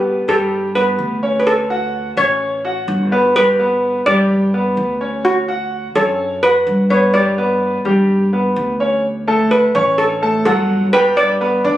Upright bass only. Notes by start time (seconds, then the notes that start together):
Already playing: G1
0.28 G2
0.99 D2
2.17 A1
2.88 G1
4.07 G2
4.77 D2
5.95 F#2
6.67 G2
7.85 G2
8.56 D2
9.75 A1
10.46 G1
11.64 D2